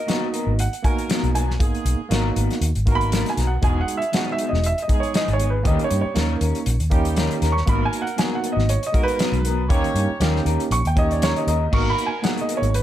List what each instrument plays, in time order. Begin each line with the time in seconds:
Already playing: upright piano D#5
0.06 clean electric guitar G#3 B3 F#4 A#4, tine electric piano A#3 B3 D#4 F#4, snare, closed hi-hat
0.33 clean electric guitar B3 F#4 A#4, closed hi-hat
0.47 fingered electric bass G#1
0.59 upright piano F#5, closed hi-hat
0.73 closed hi-hat
0.83 tine electric piano A#3 B3 D#4 F#4, horn section A#3 F#4 A#4, upright piano G#5, kick, closed hi-hat
0.98 closed hi-hat
1.09 clean electric guitar G#3 B3 F#4 A#4, snare, closed hi-hat
1.23 fingered electric bass B1, closed hi-hat
1.34 clean electric guitar B3 F#4 A#4, upright piano G#5, closed hi-hat
1.50 snare
1.59 fingered electric bass G#1, horn section G#3 F#4 G#4, tine electric piano A#3 B3 D#4 G#4, kick, closed hi-hat
1.75 closed hi-hat
1.85 fingered electric bass B1, closed hi-hat
2.09 fingered electric bass G#1, clean electric guitar G#3 B3 F#4 A#4, tine electric piano A#3 B3 D#4 F#4, snare, closed hi-hat
2.35 fingered electric bass G#1, clean electric guitar B3 F#4 A#4, closed hi-hat
2.50 snare, closed hi-hat
2.61 fingered electric bass D#2, closed hi-hat
2.75 fingered electric bass G#1, closed hi-hat
2.86 tine electric piano A#3 B3 D#4 F#4, horn section A#3 F#4 A#4, kick, closed hi-hat
2.91 upright piano A#5
2.95 upright piano B5
3.01 closed hi-hat
3.11 clean electric guitar G#3 B3 F#4 A#4, snare, closed hi-hat
3.26 upright piano G#5, snare, closed hi-hat
3.36 fingered electric bass B1, clean electric guitar B3 F#4 A#4, snare, closed hi-hat
3.47 upright piano F#5
3.62 fingered electric bass E1, clean electric guitar E3 B3 D#4 G#4, tine electric piano G#3 B3 D#4 F#4, horn section G#3 D#4 G#4, upright piano G#5, kick, closed hi-hat
3.81 upright piano F#5
3.88 closed hi-hat
3.97 upright piano E5
4.02 closed hi-hat
4.12 clean electric guitar E3 B3 D#4 G#4, tine electric piano G#3 B3 D#4 F#4, upright piano F#5, snare, closed hi-hat
4.32 upright piano E5
4.38 clean electric guitar B3 D#4 G#4, closed hi-hat
4.49 fingered electric bass E1, upright piano D#5
4.54 snare
4.64 upright piano E5, closed hi-hat
4.78 closed hi-hat
4.82 upright piano D#5
4.88 tine electric piano G#3 B3 D#4 G#4, horn section G#3 D#4 G#4, kick, closed hi-hat
5.00 upright piano C#5, closed hi-hat
5.14 clean electric guitar E3 B3 D#4 G#4, upright piano D#5, snare, closed hi-hat
5.28 fingered electric bass G#1, closed hi-hat
5.33 upright piano C#5
5.39 clean electric guitar B3 D#4 G#4, closed hi-hat
5.50 upright piano B4
5.63 fingered electric bass D#2, clean electric guitar D#3 C#4 G4 A#4, horn section G3 C#4 D#4 G4, tine electric piano A#3 C#4 D#4 G4, kick, closed hi-hat
5.67 upright piano D#5
5.79 closed hi-hat
5.84 upright piano C#5
5.91 fingered electric bass G2, closed hi-hat
6.01 upright piano C#5, muted fingered electric bass stroke
6.14 fingered electric bass D#2, clean electric guitar D#3 C#4 G4 A#4, tine electric piano A#3 C#4 D#4 A#4, snare, closed hi-hat
6.40 fingered electric bass D#2, clean electric guitar C#4 G4 A#4, closed hi-hat
6.55 closed hi-hat
6.66 fingered electric bass A#1, closed hi-hat
6.80 fingered electric bass D#2, closed hi-hat
6.90 horn section G3 C#4 D#4 G4, tine electric piano A#3 C#4 D#4 G4, kick, closed hi-hat
7.05 closed hi-hat
7.16 clean electric guitar D#3 C#4 G4 A#4, snare, closed hi-hat
7.31 closed hi-hat
7.41 fingered electric bass D#2, clean electric guitar C#4 G4 A#4, snare, closed hi-hat
7.52 upright piano C#6
7.57 snare
7.66 fingered electric bass G#1, clean electric guitar G#3 B3 F#4 A#4, tine electric piano A#3 B3 D#4 F#4, horn section A#3 F#4 A#4, upright piano B5, kick, closed hi-hat
7.85 upright piano G#5
7.93 closed hi-hat
8.02 upright piano F#5
8.07 closed hi-hat
8.17 clean electric guitar G#3 B3 F#4 A#4, tine electric piano A#3 B3 D#4 F#4, upright piano G#5, snare, closed hi-hat
8.35 upright piano F#5
8.42 clean electric guitar B3 F#4 A#4, closed hi-hat
8.52 upright piano D#5
8.57 fingered electric bass G#1, snare
8.69 upright piano C#5, closed hi-hat
8.83 upright piano D#5, closed hi-hat
8.92 tine electric piano G#3 B3 D#4 F#4, horn section A#3 F#4 A#4, kick, closed hi-hat
9.03 upright piano B4
9.08 closed hi-hat
9.19 clean electric guitar G#3 B3 F#4 A#4, snare, closed hi-hat
9.32 fingered electric bass B1, closed hi-hat
9.44 clean electric guitar B3 F#4 A#4, closed hi-hat
9.68 fingered electric bass D#2, clean electric guitar D#3 C#4 G4, tine electric piano A#3 C#4 D#4 G4, horn section C#4 D#4 G4 C#5, kick, closed hi-hat
9.72 clean electric guitar A#4
9.84 closed hi-hat
9.95 fingered electric bass G2, closed hi-hat
10.10 muted fingered electric bass stroke
10.20 fingered electric bass D#2, clean electric guitar D#3 C#4 G4 A#4, tine electric piano A#3 C#4 D#4 G4, snare, closed hi-hat
10.36 snare
10.45 fingered electric bass D#2, clean electric guitar C#4 G4 A#4, closed hi-hat
10.60 closed hi-hat
10.71 fingered electric bass A#1, upright piano C#6, closed hi-hat
10.85 fingered electric bass D#2, upright piano G5, closed hi-hat
10.96 tine electric piano A#3 C#4 D#4 G4, horn section C#4 D#4 G4 C#5, upright piano D#5, kick, closed hi-hat
11.11 upright piano D5, closed hi-hat
11.21 clean electric guitar D#3 C#4 G4 A#4, upright piano C#5, snare, closed hi-hat
11.36 upright piano D#5, closed hi-hat
11.46 fingered electric bass D#2, clean electric guitar C#4 G4 A#4, upright piano D#5, closed hi-hat
11.71 fingered electric bass G#1, clean electric guitar G#3 B3 F#4 A#4, tine electric piano A#3 B3 D#4 F#4, horn section A#3 F#4 A#4, upright piano C#6, kick, crash
11.90 upright piano B5
11.98 closed hi-hat
12.06 upright piano G#5
12.22 clean electric guitar G#3 B3 F#4 A#4, tine electric piano A#3 B3 D#4 G#4, upright piano F#5, snare, closed hi-hat
12.37 upright piano D#5, closed hi-hat
12.48 clean electric guitar B3 F#4 A#4, closed hi-hat
12.57 upright piano C#5
12.62 fingered electric bass G#1, closed hi-hat
12.74 upright piano B4, closed hi-hat